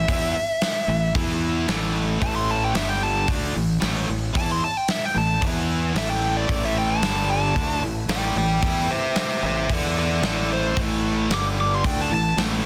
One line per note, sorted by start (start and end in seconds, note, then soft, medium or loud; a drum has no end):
0.00 1.13 E5 medium
0.08 0.33 E2 medium
0.08 0.34 E3 medium
0.08 0.34 B3 medium
0.08 0.35 E4 medium
0.08 kick loud
0.08 open hi-hat medium
0.61 snare loud
0.61 open hi-hat medium
0.88 1.13 A1 medium
0.88 1.09 A2 medium
0.88 1.10 E3 medium
1.14 1.65 E2 medium
1.14 1.67 E3 medium
1.14 1.68 B3 medium
1.14 1.68 E4 loud
1.14 kick loud
1.14 open hi-hat medium
1.68 2.18 A1 medium
1.68 2.20 A2 medium
1.68 2.20 E3 loud
1.68 2.21 A3 loud
1.68 snare loud
1.68 open hi-hat medium
2.21 2.71 A1 medium
2.21 2.74 A2 medium
2.21 2.74 E3 medium
2.21 2.75 A3 medium
2.21 2.35 A5 loud
2.21 kick loud
2.21 open hi-hat medium
2.36 2.51 C6 medium
2.51 2.63 A5 medium
2.64 2.76 G5 medium
2.75 3.25 G1 medium
2.75 3.28 G2 medium
2.75 3.27 D3 loud
2.75 3.28 G3 loud
2.75 2.89 E5 medium
2.75 snare loud
2.75 open hi-hat medium
2.89 3.02 G5 medium
3.03 3.28 A5 loud
3.28 3.53 D2 loud
3.28 3.54 D3 medium
3.28 3.54 A3 medium
3.28 3.55 D4 loud
3.28 kick loud
3.28 open hi-hat medium
3.55 3.80 A1 medium
3.55 3.77 A2 medium
3.55 3.77 E3 medium
3.81 4.07 A1 medium
3.81 4.07 A2 medium
3.81 4.08 E3 medium
3.81 4.08 A3 medium
3.81 snare loud
3.81 open hi-hat medium
4.09 4.34 A1 medium
4.09 4.30 A2 medium
4.09 4.31 E3 medium
4.35 4.60 E2 medium
4.35 4.61 E3 medium
4.35 4.62 B3 medium
4.35 4.62 E4 medium
4.35 4.49 A5 loud
4.35 kick loud
4.35 open hi-hat medium
4.51 4.63 C6 medium
4.64 4.77 A5 medium
4.77 4.91 G5 medium
4.88 5.05 E5 medium
4.88 snare loud
4.88 open hi-hat medium
5.05 5.17 G5 medium
5.15 5.40 A1 medium
5.15 5.36 A2 medium
5.15 5.37 E3 medium
5.15 5.42 A5 loud
5.42 5.92 E2 medium
5.42 5.95 E3 medium
5.42 5.95 B3 loud
5.42 5.95 E4 loud
5.42 kick loud
5.42 open hi-hat medium
5.95 6.45 A1 medium
5.95 6.47 A2 medium
5.95 6.48 E3 medium
5.95 6.48 A3 loud
5.95 6.10 E5 medium
5.95 snare loud
5.95 open hi-hat medium
6.10 6.35 G5 medium
6.37 6.62 D5 medium
6.48 6.99 A1 medium
6.48 7.01 A2 medium
6.48 7.01 E3 medium
6.48 7.02 A3 medium
6.48 7.02 E4 medium
6.48 7.02 B4 medium
6.48 kick loud
6.48 open hi-hat medium
6.65 6.77 E5 medium
6.78 6.90 G5 medium
6.91 7.29 A5 medium
7.01 7.52 G1 medium
7.01 7.54 G2 medium
7.01 7.54 D3 loud
7.01 7.55 G3 loud
7.01 7.55 G3 medium
7.01 7.55 D4 medium
7.01 7.56 A4 medium
7.01 snare loud
7.01 open hi-hat medium
7.31 7.82 A5 loud
7.55 7.80 D2 medium
7.55 7.81 D3 medium
7.55 9.67 A3 medium
7.55 7.82 A3 loud
7.55 7.82 D4 loud
7.55 11.27 E4 medium
7.55 9.68 B4 medium
7.55 kick loud
7.55 open hi-hat medium
7.82 8.07 A1 medium
7.82 8.03 A2 medium
7.82 8.04 E3 medium
8.08 8.34 A1 medium
8.08 8.34 A2 medium
8.08 8.35 E3 medium
8.08 8.35 A3 medium
8.08 8.36 D5 medium
8.08 8.36 G5 medium
8.08 snare loud
8.08 open hi-hat medium
8.35 8.61 A1 medium
8.35 8.57 A2 medium
8.35 8.57 E3 medium
8.35 8.61 D5 medium
8.35 8.63 G5 medium
8.62 8.87 E2 medium
8.62 8.88 E3 medium
8.62 8.89 B3 medium
8.62 8.89 E4 loud
8.62 8.88 D5 medium
8.62 8.89 G5 medium
8.62 kick loud
8.62 open hi-hat medium
8.91 9.15 C5 medium
8.91 9.16 E5 medium
9.16 9.42 C5 medium
9.16 9.43 E5 medium
9.16 snare loud
9.16 open hi-hat medium
9.42 9.68 A1 medium
9.42 9.64 A2 medium
9.42 9.64 E3 medium
9.42 9.69 C5 medium
9.42 9.71 E5 medium
9.69 10.20 E2 medium
9.69 10.22 E3 medium
9.69 10.23 E3 medium
9.69 10.22 B3 loud
9.69 10.23 B3 medium
9.69 10.22 E4 loud
9.69 9.96 A4 medium
9.69 kick loud
9.69 open hi-hat medium
9.73 9.97 D5 loud
9.98 10.22 A4 medium
9.98 10.24 D5 medium
10.22 10.73 A1 loud
10.22 10.75 A2 medium
10.22 10.75 E3 medium
10.22 10.76 A3 loud
10.22 11.31 A3 medium
10.22 10.49 A4 medium
10.22 11.30 B4 medium
10.22 10.51 D5 medium
10.22 snare loud
10.22 open hi-hat medium
10.53 10.78 C5 medium
10.76 11.27 A1 medium
10.76 11.30 A2 medium
10.76 11.31 E3 medium
10.76 11.30 A3 medium
10.76 kick loud
10.76 open hi-hat medium
11.29 11.80 G1 medium
11.29 11.83 G2 loud
11.29 11.82 D3 loud
11.29 11.84 G3 loud
11.29 11.84 G3 medium
11.29 11.84 D4 medium
11.29 11.85 A4 medium
11.29 snare loud
11.29 open hi-hat medium
11.34 11.45 D6 loud
11.60 11.75 D6 loud
11.75 11.86 C6 loud
11.84 12.09 D2 loud
11.84 12.10 D3 loud
11.84 12.10 A3 loud
11.84 12.66 A3 medium
11.84 12.11 D4 loud
11.84 12.66 E4 medium
11.84 12.66 B4 medium
11.84 12.02 G5 loud
11.84 kick loud
11.84 open hi-hat medium
12.02 12.13 A5 loud
12.11 12.36 A1 medium
12.11 12.32 A2 medium
12.11 12.33 E3 medium
12.11 12.39 A5 medium
12.37 12.63 A1 medium
12.37 12.63 A2 medium
12.37 12.63 E3 medium
12.37 12.64 A3 loud
12.37 snare loud
12.37 open hi-hat medium